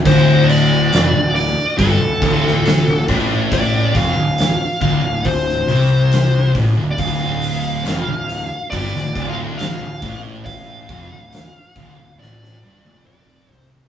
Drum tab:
CC |x---------------|----------------|----------------|----------------|
HH |o-o-o-o-o-o-o-o-|o-o-o-o-o-o-o-o-|o-o-o-o-o-o-o-o-|o-o-o-o---------|
SD |----o------oo---|----o----o--o---|----o----o--o---|----o---oo------|
T1 |----------------|----------------|----------------|-----------o----|
T2 |----------------|----------------|----------------|------------o---|
FT |----------------|----------------|----------------|--------------oo|
BD |o-------o-o---o-|o-o---o-o-----o-|o-------o-o---o-|o-o---o---------|